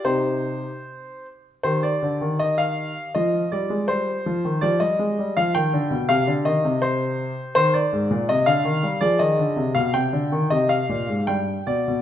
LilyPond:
<<
  \new Staff \with { instrumentName = "Grand piano" } { \time 2/4 \key c \minor \tempo 4 = 81 << { c''4. r8 | c''16 d''8. ees''16 f''8. | ees''8 d''8 c''4 | d''16 ees''8. f''16 g''8. |
f''8 ees''8 c''4 | c''16 d''8. ees''16 f''8. | d''16 ees''8. f''16 g''8. | ees''16 f''8. g''8 d''8 | } \\ { r2 | g'2 | f'2 | g'2 |
g'2 | bes'4 r4 | aes'4 r4 | g'4 r4 | } >> }
  \new Staff \with { instrumentName = "Grand piano" } { \clef bass \time 2/4 \key c \minor <c ees' g'>4 r4 | ees8 d16 ees4~ ees16 | f8 g16 aes16 g8 f16 ees16 | f16 g16 aes16 g16 f16 ees16 d16 b,16 |
c16 d16 ees16 c4~ c16 | ees8 aes,16 bes,16 c16 d16 ees16 g16 | f16 ees16 d16 c16 b,16 c16 d16 ees16 | c8 bes,16 aes,16 g,8 b,16 b,16 | }
>>